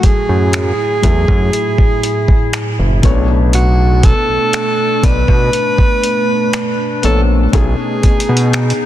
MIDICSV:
0, 0, Header, 1, 7, 480
1, 0, Start_track
1, 0, Tempo, 1000000
1, 1696, Time_signature, 4, 2, 24, 8
1, 4251, End_track
2, 0, Start_track
2, 0, Title_t, "Alto saxophone"
2, 0, Program_c, 0, 65
2, 24, Note_on_c, 0, 68, 104
2, 1460, Note_off_c, 0, 68, 0
2, 1702, Note_on_c, 0, 66, 93
2, 1942, Note_on_c, 0, 69, 108
2, 1949, Note_off_c, 0, 66, 0
2, 2423, Note_on_c, 0, 71, 110
2, 2431, Note_off_c, 0, 69, 0
2, 3380, Note_off_c, 0, 71, 0
2, 3383, Note_on_c, 0, 69, 92
2, 3460, Note_off_c, 0, 69, 0
2, 3622, Note_on_c, 0, 68, 84
2, 4251, Note_off_c, 0, 68, 0
2, 4251, End_track
3, 0, Start_track
3, 0, Title_t, "Ambient pad"
3, 0, Program_c, 1, 92
3, 0, Note_on_c, 1, 45, 78
3, 0, Note_on_c, 1, 64, 91
3, 0, Note_on_c, 1, 68, 75
3, 1439, Note_off_c, 1, 45, 0
3, 1439, Note_off_c, 1, 64, 0
3, 1439, Note_off_c, 1, 68, 0
3, 1457, Note_on_c, 1, 57, 74
3, 1457, Note_on_c, 1, 62, 89
3, 3597, Note_off_c, 1, 57, 0
3, 3598, Note_off_c, 1, 62, 0
3, 3616, Note_on_c, 1, 68, 77
3, 3617, Note_on_c, 1, 59, 75
3, 3617, Note_on_c, 1, 63, 88
3, 4251, Note_off_c, 1, 59, 0
3, 4251, Note_off_c, 1, 63, 0
3, 4251, Note_off_c, 1, 68, 0
3, 4251, End_track
4, 0, Start_track
4, 0, Title_t, "Felt piano"
4, 0, Program_c, 2, 0
4, 0, Control_c, 2, 64, 127
4, 0, Note_on_c, 2, 54, 90
4, 0, Note_on_c, 2, 57, 98
4, 0, Note_on_c, 2, 64, 82
4, 0, Note_on_c, 2, 68, 87
4, 371, Note_off_c, 2, 54, 0
4, 374, Note_off_c, 2, 64, 0
4, 376, Note_off_c, 2, 68, 0
4, 378, Note_off_c, 2, 57, 0
4, 490, Note_on_c, 2, 54, 72
4, 494, Note_on_c, 2, 64, 65
4, 499, Note_on_c, 2, 68, 66
4, 503, Note_on_c, 2, 57, 81
4, 1291, Note_off_c, 2, 54, 0
4, 1293, Note_off_c, 2, 64, 0
4, 1295, Note_off_c, 2, 68, 0
4, 1297, Note_off_c, 2, 57, 0
4, 1450, Note_on_c, 2, 47, 92
4, 1455, Note_on_c, 2, 57, 81
4, 1459, Note_on_c, 2, 61, 61
4, 1462, Control_c, 2, 64, 0
4, 1464, Note_on_c, 2, 73, 100
4, 1489, Note_off_c, 2, 61, 0
4, 1490, Note_on_c, 2, 62, 83
4, 1544, Control_c, 2, 64, 127
4, 2251, Note_off_c, 2, 47, 0
4, 2253, Note_off_c, 2, 57, 0
4, 2257, Note_off_c, 2, 73, 0
4, 2271, Note_off_c, 2, 62, 0
4, 2410, Note_on_c, 2, 47, 74
4, 2414, Note_on_c, 2, 57, 66
4, 2419, Note_on_c, 2, 62, 65
4, 2424, Note_on_c, 2, 74, 77
4, 3211, Note_off_c, 2, 47, 0
4, 3213, Note_off_c, 2, 57, 0
4, 3215, Note_off_c, 2, 62, 0
4, 3217, Note_off_c, 2, 74, 0
4, 3370, Note_on_c, 2, 59, 67
4, 3375, Note_on_c, 2, 57, 58
4, 3379, Note_on_c, 2, 62, 57
4, 3384, Note_on_c, 2, 73, 75
4, 3573, Note_off_c, 2, 59, 0
4, 3575, Note_off_c, 2, 57, 0
4, 3577, Note_off_c, 2, 62, 0
4, 3580, Note_off_c, 2, 73, 0
4, 3609, Note_on_c, 2, 47, 92
4, 3612, Note_on_c, 2, 57, 78
4, 3616, Note_on_c, 2, 61, 85
4, 3620, Note_on_c, 2, 63, 84
4, 3622, Control_c, 2, 64, 0
4, 3623, Note_on_c, 2, 68, 105
4, 3713, Control_c, 2, 64, 127
4, 4211, Note_off_c, 2, 47, 0
4, 4212, Note_off_c, 2, 57, 0
4, 4214, Note_off_c, 2, 61, 0
4, 4216, Note_off_c, 2, 63, 0
4, 4218, Note_off_c, 2, 68, 0
4, 4251, End_track
5, 0, Start_track
5, 0, Title_t, "Analog synth bass"
5, 0, Program_c, 3, 38
5, 18, Note_on_c, 3, 42, 46
5, 66, Note_off_c, 3, 42, 0
5, 140, Note_on_c, 3, 42, 96
5, 349, Note_off_c, 3, 42, 0
5, 498, Note_on_c, 3, 40, 94
5, 603, Note_off_c, 3, 40, 0
5, 617, Note_on_c, 3, 42, 99
5, 722, Note_off_c, 3, 42, 0
5, 1339, Note_on_c, 3, 30, 81
5, 1443, Note_off_c, 3, 30, 0
5, 1458, Note_on_c, 3, 35, 101
5, 1984, Note_off_c, 3, 35, 0
5, 2059, Note_on_c, 3, 35, 47
5, 2106, Note_off_c, 3, 35, 0
5, 2418, Note_on_c, 3, 35, 89
5, 2523, Note_off_c, 3, 35, 0
5, 2537, Note_on_c, 3, 47, 105
5, 2642, Note_off_c, 3, 47, 0
5, 3379, Note_on_c, 3, 34, 90
5, 3589, Note_off_c, 3, 34, 0
5, 3618, Note_on_c, 3, 35, 108
5, 3723, Note_off_c, 3, 35, 0
5, 3858, Note_on_c, 3, 47, 46
5, 3906, Note_off_c, 3, 47, 0
5, 3979, Note_on_c, 3, 47, 97
5, 4189, Note_off_c, 3, 47, 0
5, 4251, End_track
6, 0, Start_track
6, 0, Title_t, "Downlifter"
6, 0, Program_c, 4, 103
6, 0, Note_on_c, 4, 60, 76
6, 1696, Note_off_c, 4, 60, 0
6, 4251, End_track
7, 0, Start_track
7, 0, Title_t, "Drums"
7, 16, Note_on_c, 9, 42, 65
7, 17, Note_on_c, 9, 36, 83
7, 64, Note_off_c, 9, 42, 0
7, 65, Note_off_c, 9, 36, 0
7, 255, Note_on_c, 9, 42, 69
7, 260, Note_on_c, 9, 26, 113
7, 303, Note_off_c, 9, 42, 0
7, 308, Note_off_c, 9, 26, 0
7, 496, Note_on_c, 9, 42, 65
7, 497, Note_on_c, 9, 36, 87
7, 544, Note_off_c, 9, 42, 0
7, 545, Note_off_c, 9, 36, 0
7, 616, Note_on_c, 9, 36, 97
7, 664, Note_off_c, 9, 36, 0
7, 736, Note_on_c, 9, 42, 62
7, 784, Note_off_c, 9, 42, 0
7, 856, Note_on_c, 9, 36, 87
7, 904, Note_off_c, 9, 36, 0
7, 977, Note_on_c, 9, 42, 67
7, 1025, Note_off_c, 9, 42, 0
7, 1096, Note_on_c, 9, 36, 86
7, 1144, Note_off_c, 9, 36, 0
7, 1216, Note_on_c, 9, 42, 62
7, 1217, Note_on_c, 9, 26, 109
7, 1264, Note_off_c, 9, 42, 0
7, 1265, Note_off_c, 9, 26, 0
7, 1455, Note_on_c, 9, 42, 60
7, 1456, Note_on_c, 9, 36, 96
7, 1503, Note_off_c, 9, 42, 0
7, 1504, Note_off_c, 9, 36, 0
7, 1696, Note_on_c, 9, 42, 65
7, 1744, Note_off_c, 9, 42, 0
7, 1936, Note_on_c, 9, 42, 65
7, 1937, Note_on_c, 9, 36, 84
7, 1984, Note_off_c, 9, 42, 0
7, 1985, Note_off_c, 9, 36, 0
7, 2176, Note_on_c, 9, 42, 68
7, 2180, Note_on_c, 9, 26, 105
7, 2224, Note_off_c, 9, 42, 0
7, 2228, Note_off_c, 9, 26, 0
7, 2417, Note_on_c, 9, 36, 87
7, 2417, Note_on_c, 9, 42, 63
7, 2465, Note_off_c, 9, 36, 0
7, 2465, Note_off_c, 9, 42, 0
7, 2536, Note_on_c, 9, 36, 92
7, 2584, Note_off_c, 9, 36, 0
7, 2656, Note_on_c, 9, 42, 60
7, 2704, Note_off_c, 9, 42, 0
7, 2776, Note_on_c, 9, 36, 87
7, 2824, Note_off_c, 9, 36, 0
7, 2897, Note_on_c, 9, 42, 70
7, 2945, Note_off_c, 9, 42, 0
7, 3136, Note_on_c, 9, 42, 61
7, 3137, Note_on_c, 9, 26, 105
7, 3184, Note_off_c, 9, 42, 0
7, 3185, Note_off_c, 9, 26, 0
7, 3376, Note_on_c, 9, 42, 58
7, 3424, Note_off_c, 9, 42, 0
7, 3616, Note_on_c, 9, 36, 110
7, 3616, Note_on_c, 9, 42, 67
7, 3664, Note_off_c, 9, 36, 0
7, 3664, Note_off_c, 9, 42, 0
7, 3856, Note_on_c, 9, 42, 52
7, 3857, Note_on_c, 9, 36, 89
7, 3904, Note_off_c, 9, 42, 0
7, 3905, Note_off_c, 9, 36, 0
7, 3936, Note_on_c, 9, 42, 54
7, 3984, Note_off_c, 9, 42, 0
7, 4016, Note_on_c, 9, 42, 54
7, 4064, Note_off_c, 9, 42, 0
7, 4096, Note_on_c, 9, 42, 50
7, 4100, Note_on_c, 9, 26, 110
7, 4144, Note_off_c, 9, 42, 0
7, 4148, Note_off_c, 9, 26, 0
7, 4177, Note_on_c, 9, 42, 51
7, 4225, Note_off_c, 9, 42, 0
7, 4251, End_track
0, 0, End_of_file